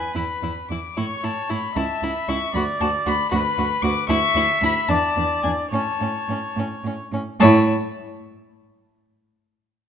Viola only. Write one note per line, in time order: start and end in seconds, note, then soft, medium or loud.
0.00 0.55 B4 medium
0.98 1.73 C#5 medium
1.76 2.53 E5 medium
2.55 3.31 D5 medium
3.32 4.08 B4 medium
4.10 4.92 E5 loud
4.91 5.72 D5 medium
5.72 6.96 C#5 medium
7.40 7.70 E4 medium